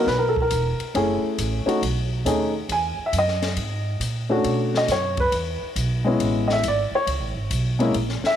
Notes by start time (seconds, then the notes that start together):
0.07 B1 B4, kick, snare
0.19 A#4
0.29 A4
0.36 kick
0.42 A#4
0.51 E1, kick, hi-hat pedal, ride
0.80 muted upright bass stroke, ride
0.94 F#1 A3 C#4 E4 G#4, kick, ride
1.23 muted upright bass stroke
1.38 A1, kick, hi-hat pedal, ride
1.66 A3 C#4 D#4 F#4, muted upright bass stroke, ride
1.82 B1, kick, ride
2.25 D#2 A3 C#4 D#4 G#4, kick, hi-hat pedal, ride
2.69 E2 G#5, kick, ride
2.98 muted upright bass stroke
3.06 E5
3.13 F#2, kick, hi-hat pedal, ride
3.19 D#5
3.28 snare
3.42 snare, ride
3.56 G#2, kick, ride
4.00 A#2, kick, hi-hat pedal, ride
4.29 A3 C#4 D4 F#4
4.44 B2, kick, ride
4.75 D#5, snare
4.88 F#2 C#5, kick, snare, hi-hat pedal, ride
5.17 B4, kick, ride
5.32 E2, kick, ride
5.62 muted upright bass stroke
5.76 B1, kick, hi-hat pedal, ride
6.04 G#3 B3 C#4 E4
6.20 A1, kick, ride
6.48 D#5, snare
6.52 E5
6.63 G#1, kick, hi-hat pedal, ride
6.68 D5
6.91 C#5, muted upright bass stroke
7.07 C#2, kick, ride
7.20 A1
7.34 G#1
7.50 B1, kick, hi-hat pedal, ride
7.79 G#3 A#3 C#4 E4, ride
7.94 A#1, kick, ride
8.09 snare
8.22 muted upright bass stroke, snare
8.26 E5